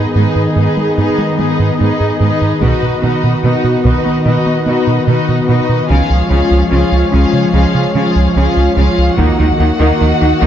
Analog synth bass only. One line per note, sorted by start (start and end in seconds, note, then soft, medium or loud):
0.15 0.28 G#2 soft
0.36 0.48 G#2 soft
0.56 0.69 G#2 medium
0.77 0.89 G#3 soft
0.98 1.10 G#2 medium
1.18 1.31 G#3 soft
1.39 1.51 G#3 soft
1.60 1.72 G#2 medium
1.81 1.93 G#2 soft
2.00 2.13 G#2 soft
2.21 2.33 G#2 medium
2.42 2.54 G#2 soft
2.62 2.74 B2 medium
2.83 2.95 B2 soft
3.04 3.16 B2 medium
3.24 3.36 B2 medium
3.44 3.56 B2 soft
3.64 3.77 B2 medium
3.85 3.97 B2 medium
4.06 4.18 B3 soft
4.26 4.38 B2 medium
4.46 4.59 B3 soft
4.66 4.79 B3 medium
4.87 5.00 B2 medium
5.07 5.20 B2 medium
5.29 5.41 B2 medium
5.49 5.61 B2 medium
5.69 5.82 B2 soft
5.90 6.02 C#2 medium
6.10 6.23 C#2 soft
6.30 6.43 C#2 soft
6.51 6.64 C#2 medium
6.72 6.84 C#2 soft
6.92 7.05 C#2 soft
7.14 7.26 C#2 medium
7.33 7.46 C#3 soft
7.54 7.66 C#2 medium
7.75 7.87 C#3 soft
7.95 8.08 C#3 medium
8.16 8.28 C#2 medium
8.36 8.49 C#2 medium
8.57 8.69 C#2 soft
8.77 8.89 C#2 medium
8.98 9.11 C#2 soft
9.20 9.32 D#2 medium
9.40 9.52 D#2 soft
9.60 9.72 D#2 medium
9.80 9.92 D#2 medium
10.01 10.14 D#2 medium
10.22 10.34 D#2 soft
10.42 10.47 D#2 medium